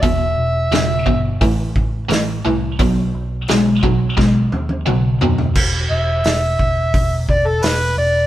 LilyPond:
<<
  \new Staff \with { instrumentName = "Harmonica" } { \time 4/4 \key b \phrygian \tempo 4 = 87 e''2 r2 | r1 | r8 e''2 d''16 a'16 b'8 d''8 | }
  \new Staff \with { instrumentName = "Overdriven electric guitar" } { \clef bass \time 4/4 \key b \phrygian <e, b,>4 <e, cis>8 <e, b,>8 <a, e>4 <a, e>8 <a, e>8 | <b, fis>4 <b, gis>8 <b, fis>8 <b, gis>4 <b, fis>8 <b, fis>8 | r1 | }
  \new Staff \with { instrumentName = "Picked electric bass" } { \clef bass \time 4/4 \key b \phrygian e,,8 e,,8 e,,8 g,,8 a,,8 a,,8 a,,8 c,8 | b,,8 b,,8 b,,8 b,,8 b,,8 dis,8 b,,8 dis,8 | e,,8 e,,8 e,,8 e,,8 e,,8 e,,8 e,,8 e,,8 | }
  \new DrumStaff \with { instrumentName = "Drums" } \drummode { \time 4/4 <hho bd>4 <hho sn>8 bd8 <hho bd>8 bd8 <hho sn>4 | <hho bd>4 <hho sn>8 bd8 <bd sn>8 tommh16 tommh16 toml8 tomfh16 tomfh16 | <cymc bd>4 <hho sn>8 bd8 <hho bd>8 bd8 <hho sn>4 | }
>>